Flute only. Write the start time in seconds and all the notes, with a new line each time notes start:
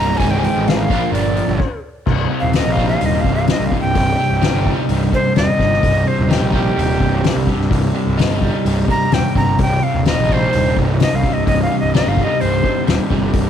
Already playing: A#5
0.17 G#5
0.31 G5
0.38 G#5
0.44 G5
0.68 F5
0.79 F5
1.14 D5
2.40 F5
2.56 D#5
2.72 F5
2.89 F5
3.06 D#5
3.20 F5
3.35 F5
3.51 D#5
3.66 F5
3.81 G5
5.14 C5
5.36 D#5
6.08 C5
6.31 G4
6.55 G4
8.90 A#5
9.14 G5
9.37 A#5
9.62 G5
9.83 F5
10.07 D#5
10.33 C5
11.02 D#5
11.16 F5
11.33 D#5
11.47 D#5
11.62 F5
11.79 D#5
11.95 D#5
12.09 F5
12.24 D#5
12.41 C5